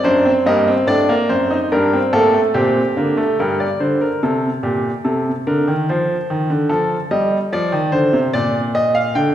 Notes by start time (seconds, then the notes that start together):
0.04 F#2 D4 C5
0.25 C4
0.46 G2 A#3 D#5
0.68 C4
0.87 A2 D4 D5
1.09 A#3
1.29 F#2 C4 C5
1.50 D#4
1.72 G2 D4 A#4
1.93 C4
2.13 A2 A#3 A4
2.34 A3
2.54 A#2 C4 G4
2.97 D3 A#3
3.17 A3
3.39 G2 A#4
3.60 D5
3.80 D3 C5
4.01 A#4
4.23 C3 A4
4.63 A#2 G4
5.05 C3 A4
5.47 D3 A#4
5.68 D#3
5.89 F3 C5
6.30 D#3
6.50 D3
6.69 F3 A4
7.11 G3 D#5
7.52 F3 D5
7.72 D#3
7.92 D3 C5
8.13 C3
8.33 A#2 D5
8.75 D#5
8.95 F5
9.15 D3 G5